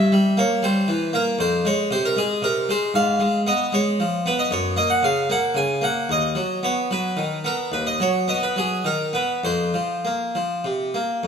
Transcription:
Already playing: G2 E5
0.12 G3
0.37 A#3 C#5
0.63 G3 C5
0.88 E3
1.13 A#3 A#4
1.39 F2 C5
1.65 G#3 C#5
1.91 C3 C5
2.06 A#4
2.17 G#3 G#4
2.42 C3 A#4
2.69 G#3 C5
2.94 G#2 F5
3.20 G#3
3.47 B3 D#5
3.73 G#3 C#5
4.00 F3
4.26 B3 B4
4.39 D#5
4.51 F#2 C#5
4.76 A#3 D#5
4.90 F#5
5.03 C#3 F5
5.30 A#3 F#5
5.55 C#3 G#5
5.82 A#3 F#5
6.09 D#2 D#5
6.35 F#3
6.63 B3 C#5
6.91 F#3 B4
7.17 D#3
7.44 B3 A#4
7.72 D#2 B4
7.87 D#5
8.00 F#3 C#5
8.28 B3 D#5
8.43 B4
8.56 F#3 G#4
8.85 D#3 A#4
9.13 B3 B4
9.44 F2 C5
9.74 F3
10.05 A#3
10.35 F3
10.64 C3
10.94 A#3
11.23 F2

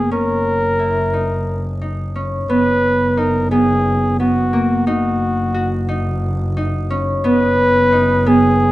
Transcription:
Already playing: F#1 A#3 C#4 D#4
0.11 F#1 C#4 A#4
0.79 E4
1.13 D#4
1.81 D#4
2.16 C#4
2.49 F#1 B3 B4
3.17 D#4 A#4
3.51 B3 G#4
4.20 B3 F#4
4.53 A#3
4.87 F#1 D#4 F#4
5.54 F#4
5.89 D#4
6.57 D#4
6.90 C#4
7.24 F#1 B3 B4
7.92 D#4
8.26 B3 G#4

